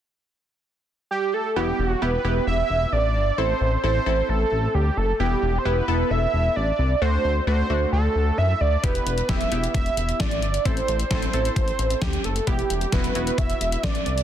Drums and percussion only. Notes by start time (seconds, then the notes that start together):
8.84 kick, closed hi-hat
8.95 closed hi-hat
9.07 closed hi-hat
9.18 closed hi-hat
9.29 kick, snare, closed hi-hat
9.41 closed hi-hat
9.52 closed hi-hat
9.64 closed hi-hat
9.74 kick, closed hi-hat
9.86 closed hi-hat
9.97 closed hi-hat
10.09 closed hi-hat
10.20 kick, snare, closed hi-hat
10.31 closed hi-hat
10.42 closed hi-hat
10.54 closed hi-hat
10.65 kick, closed hi-hat
10.77 closed hi-hat
10.88 closed hi-hat
10.99 closed hi-hat
11.11 kick, snare, closed hi-hat
11.22 closed hi-hat
11.33 closed hi-hat
11.45 closed hi-hat
11.56 kick, closed hi-hat
11.68 closed hi-hat
11.79 closed hi-hat
11.90 closed hi-hat
12.02 kick, snare, closed hi-hat
12.13 closed hi-hat
12.24 closed hi-hat
12.36 closed hi-hat
12.47 kick, closed hi-hat
12.59 closed hi-hat
12.70 closed hi-hat
12.81 closed hi-hat
12.92 kick, snare, closed hi-hat
13.04 closed hi-hat
13.15 closed hi-hat
13.27 closed hi-hat
13.38 kick, closed hi-hat
13.50 closed hi-hat
13.61 closed hi-hat
13.72 closed hi-hat
13.83 kick, snare, closed hi-hat
13.95 closed hi-hat
14.06 closed hi-hat
14.18 closed hi-hat